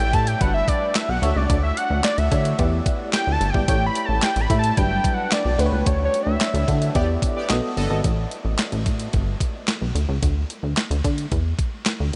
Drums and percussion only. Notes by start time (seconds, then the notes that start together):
0.00 closed hi-hat
0.13 kick, closed hi-hat
0.27 closed hi-hat
0.41 kick, closed hi-hat
0.68 kick, closed hi-hat
0.95 snare, clap, closed hi-hat
1.23 closed hi-hat
1.50 kick, closed hi-hat
1.77 closed hi-hat
2.04 snare, clap, closed hi-hat
2.18 closed hi-hat
2.32 kick, closed hi-hat
2.45 closed hi-hat
2.59 kick, closed hi-hat
2.86 kick, closed hi-hat
3.13 snare, clap, closed hi-hat
3.41 closed hi-hat
3.54 kick
3.68 kick, closed hi-hat
3.95 closed hi-hat
4.22 snare, clap, closed hi-hat
4.36 closed hi-hat
4.50 kick, closed hi-hat
4.64 closed hi-hat
4.77 kick, closed hi-hat
5.04 kick, closed hi-hat
5.32 snare, clap, closed hi-hat
5.59 closed hi-hat
5.86 kick, closed hi-hat
6.14 closed hi-hat
6.41 snare, clap, closed hi-hat
6.55 closed hi-hat
6.68 kick, closed hi-hat
6.82 closed hi-hat
6.95 kick, closed hi-hat
7.22 kick, closed hi-hat
7.50 snare, clap, closed hi-hat
7.77 open hi-hat
8.04 kick, closed hi-hat
8.31 closed hi-hat
8.59 snare, clap, closed hi-hat
8.72 closed hi-hat
8.86 kick, closed hi-hat
8.99 closed hi-hat
9.13 kick, closed hi-hat
9.40 kick, closed hi-hat
9.68 snare, clap, closed hi-hat
9.96 closed hi-hat
10.23 kick, closed hi-hat
10.50 closed hi-hat
10.77 snare, clap, closed hi-hat
10.91 closed hi-hat
11.04 kick, closed hi-hat
11.18 closed hi-hat
11.32 kick, closed hi-hat
11.59 kick, closed hi-hat
11.86 snare, clap, closed hi-hat